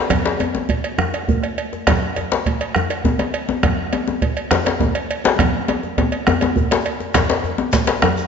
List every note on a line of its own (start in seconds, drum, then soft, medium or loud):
0.10 bombo rim medium
0.10 bombo low medium
0.10 cowbell medium
0.10 high conga medium
0.10 djembe tone medium
0.10 djembe bass medium
0.10 low conga medium
0.26 djembe slap medium
0.39 cowbell soft
0.39 djembe tone medium
0.55 djembe slap soft
0.55 djembe tone medium
0.69 bombo low medium
0.69 cowbell soft
0.69 djembe slap soft
0.69 high conga medium
0.84 cowbell soft
0.84 djembe slap soft
0.98 bombo rim medium
0.98 djembe bass medium
0.98 low conga medium
1.14 cowbell soft
1.14 djembe slap medium
1.28 bombo low medium
1.28 djembe tone medium
1.28 high conga medium
1.43 bombo rim soft
1.43 cowbell soft
1.58 cowbell soft
1.58 djembe slap soft
1.73 djembe slap medium
1.73 high conga soft
1.87 bombo rim loud
1.87 bombo low loud
1.87 cowbell medium
1.87 djembe slap medium
1.87 high conga medium
1.87 djembe bass medium
1.87 low conga medium
2.16 cowbell soft
2.16 djembe tone medium
2.32 djembe slap medium
2.32 djembe slap soft
2.46 bombo low medium
2.46 cowbell soft
2.46 djembe slap soft
2.46 high conga medium
2.61 cowbell soft
2.61 djembe slap soft
2.75 bombo rim medium
2.75 djembe bass medium
2.75 low conga medium
2.90 cowbell soft
2.90 djembe slap medium
3.04 bombo low medium
3.04 djembe tone medium
3.04 high conga medium
3.19 bombo rim soft
3.19 cowbell soft
3.19 djembe tone medium
3.34 cowbell medium
3.34 djembe slap soft
3.49 djembe slap medium
3.49 djembe tone medium
3.49 high conga soft
3.63 bombo rim medium
3.63 bombo low medium
3.63 cowbell medium
3.63 djembe tone medium
3.63 high conga medium
3.63 low conga medium
3.63 djembe bass medium
3.93 cowbell soft
3.93 djembe tone medium
4.08 djembe slap medium
4.08 djembe tone medium
4.22 bombo low medium
4.22 cowbell soft
4.22 djembe slap soft
4.22 high conga medium
4.37 cowbell soft
4.37 djembe slap soft
4.51 bombo rim medium
4.51 djembe slap loud
4.51 djembe bass medium
4.51 low conga medium
4.66 cowbell soft
4.66 djembe slap medium
4.80 bombo low medium
4.80 djembe tone medium
4.80 high conga medium
4.80 djembe tone medium
4.95 bombo rim soft
4.95 cowbell soft
5.10 cowbell soft
5.10 djembe slap soft
5.24 djembe slap medium
5.24 djembe slap loud
5.24 high conga soft
5.39 bombo rim medium
5.39 bombo low medium
5.39 cowbell medium
5.39 high conga medium
5.39 djembe tone medium
5.39 djembe bass medium
5.39 low conga medium
5.54 bombo rim soft
5.68 cowbell soft
5.68 djembe slap soft
5.68 djembe tone medium
5.83 djembe slap medium
5.97 bombo low medium
5.97 cowbell soft
5.97 djembe tone medium
5.97 high conga medium
6.12 cowbell soft
6.12 djembe slap soft
6.27 bombo rim medium
6.27 high conga soft
6.27 djembe tone loud
6.27 low conga medium
6.27 djembe bass medium
6.41 cowbell soft
6.41 djembe slap medium
6.41 djembe tone medium
6.56 bombo low medium
6.56 djembe slap soft
6.56 high conga medium
6.56 djembe tone medium
6.71 cowbell soft
6.71 djembe slap medium
6.85 cowbell soft
6.85 djembe slap soft
6.85 high conga soft
7.00 djembe slap medium
7.00 high conga soft
7.14 bombo rim medium
7.14 bombo low medium
7.14 cowbell medium
7.14 djembe slap loud
7.14 high conga medium
7.14 djembe bass medium
7.14 low conga medium
7.14 shekere medium
7.30 djembe slap medium
7.44 djembe tone medium
7.58 djembe slap medium
7.58 djembe tone medium
7.73 bombo low medium
7.73 cowbell soft
7.73 djembe slap medium
7.73 high conga medium
7.73 shekere medium
7.87 cowbell soft
7.87 djembe slap medium
8.02 bombo rim loud
8.02 djembe slap medium
8.02 djembe bass medium
8.02 low conga medium
8.17 djembe slap medium
8.17 shekere soft